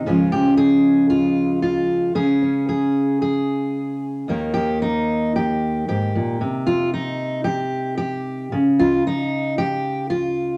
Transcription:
0.06 2.13 C#3 medium
0.06 2.13 F3 soft
0.06 4.29 G#3 medium
0.06 2.14 C#4 soft
0.06 0.32 F4 soft
0.32 0.57 G4 loud
0.57 1.09 G#4 loud
1.10 1.61 F4 medium
1.62 2.15 F4 medium
2.15 4.25 C#3 medium
2.15 2.68 G#4 medium
2.42 4.25 C#4 soft
2.69 3.21 G#4 medium
3.22 4.28 G#4 medium
4.28 5.88 D#2 medium
4.28 8.52 D#3 soft
4.28 6.38 A#3 soft
4.28 4.53 G4 soft
4.54 4.81 G4 loud
4.82 5.35 D#4 medium
5.36 5.87 G4 medium
5.88 6.14 G#2 medium
5.88 6.41 G4 medium
6.15 6.40 A#2 medium
6.41 8.49 C3 medium
6.67 6.93 F4 medium
6.94 7.44 D#4 medium
7.44 7.96 G4 loud
7.98 8.51 G4 medium
8.52 10.57 C#3 medium
8.79 9.05 F4 medium
9.07 9.58 D#4 medium
9.58 10.10 G4 loud
10.10 10.57 F4 medium

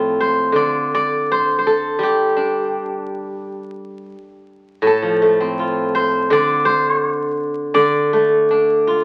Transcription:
0.00 0.54 A2 medium
0.00 0.75 F3 soft
0.00 0.93 A3 soft
0.00 1.11 C4 soft
0.00 1.29 F4 soft
0.00 1.27 A4 medium
0.20 1.31 C5 medium
0.52 2.72 D3 medium
0.52 0.94 D5 medium
0.94 2.79 D5 medium
1.32 1.58 C5 medium
1.59 3.57 C5 medium
1.67 3.86 A4 medium
1.99 4.12 G3 medium
2.03 4.39 G4 medium
2.36 3.78 D4 soft
4.82 6.29 A2 medium
4.87 7.06 A4 medium
5.02 6.49 F3 soft
5.22 6.68 A3 medium
5.40 6.86 C4 soft
5.59 7.04 F4 soft
5.95 6.65 C5 medium
6.30 7.73 D3 medium
6.30 7.74 D5 loud
6.65 8.63 C5 medium
7.74 9.04 D3 medium
7.74 8.89 D5 loud
8.13 9.04 A3 medium
8.51 9.04 D4 medium
8.87 9.04 F4 medium
8.87 9.04 C#5 loud

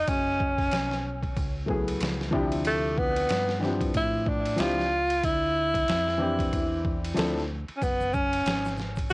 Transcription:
0.00 0.10 D#4 loud
0.08 0.69 F#1 loud
0.08 1.37 C#4 loud
0.08 kick loud
0.08 ride medium
0.40 kick loud
0.58 kick medium
0.58 ride medium
0.71 1.33 B1 medium
0.71 snare loud
0.71 hi-hat pedal soft
0.71 ride medium
0.92 snare soft
1.23 kick medium
1.23 ride medium
1.37 1.98 C#2 medium
1.37 kick loud
1.37 ride medium
1.66 2.32 F#3 medium
1.66 2.32 A3 medium
1.66 2.33 B3 medium
1.66 2.32 E4 medium
1.66 kick medium
1.70 2.34 G#4 medium
1.88 ride medium
2.00 2.31 C#2 loud
2.00 snare loud
2.00 hi-hat pedal soft
2.00 ride medium
2.21 snare soft
2.31 3.26 D2 medium
2.31 3.43 C3 medium
2.31 3.42 F3 loud
2.31 3.43 D4 medium
2.31 3.44 E4 medium
2.31 3.44 G4 loud
2.31 kick loud
2.52 ride medium
2.65 3.00 A3 loud
2.65 ride medium
2.98 3.63 B3 loud
2.98 kick loud
3.16 ride medium
3.29 3.91 G2 medium
3.29 snare loud
3.29 hi-hat pedal soft
3.29 ride medium
3.49 snare soft
3.59 3.68 E3 medium
3.59 4.53 C4 medium
3.59 4.53 D4 medium
3.59 4.54 E4 medium
3.59 snare soft
3.64 4.55 F3 medium
3.64 4.54 G4 medium
3.81 kick medium
3.81 ride medium
3.94 4.56 A2 loud
3.94 4.30 E4 loud
3.94 kick loud
3.94 ride medium
4.26 4.62 D4 medium
4.26 kick loud
4.45 ride medium
4.56 5.20 C#2 medium
4.56 4.82 F3 medium
4.56 4.82 C4 medium
4.56 4.83 D4 medium
4.56 4.83 E4 medium
4.56 5.26 F4 loud
4.56 snare loud
4.56 hi-hat pedal medium
4.56 ride medium
4.60 4.84 G4 medium
4.79 snare soft
5.10 ride medium
5.23 5.85 D2 loud
5.23 7.17 E4 loud
5.23 kick medium
5.23 ride medium
5.74 kick medium
5.74 ride medium
5.88 6.49 F2 medium
5.88 snare loud
5.88 hi-hat pedal soft
5.88 ride medium
6.08 snare soft
6.18 7.10 E3 medium
6.18 7.11 C4 medium
6.18 7.11 D4 medium
6.18 7.12 E4 medium
6.18 7.12 G4 medium
6.39 kick medium
6.39 ride medium
6.53 7.14 E2 medium
6.53 kick loud
6.53 ride medium
6.85 kick loud
7.04 ride medium
7.14 7.66 D2 medium
7.14 7.40 F3 medium
7.14 7.40 C4 medium
7.14 7.41 D4 medium
7.14 7.41 E4 medium
7.14 7.42 A4 loud
7.14 hi-hat pedal soft
7.14 ride medium
7.19 snare loud
7.38 snare soft
7.68 ride medium
7.76 7.84 C#4 medium
7.81 8.43 F#1 loud
7.81 8.15 B3 medium
7.81 kick loud
7.81 ride medium
7.81 shaker medium
8.00 high conga soft
8.00 shaker soft
8.14 8.78 C#4 loud
8.14 kick loud
8.14 low conga medium
8.14 shaker soft
8.33 ride medium
8.33 shaker soft
8.46 9.07 G#1 medium
8.46 snare loud
8.46 hi-hat pedal soft
8.46 ride medium
8.46 shaker medium
8.65 snare soft
8.65 shaker soft
8.77 snare soft
8.77 low conga medium
8.77 shaker soft
8.96 kick medium
8.96 ride medium
8.96 shaker soft
9.10 shaker medium

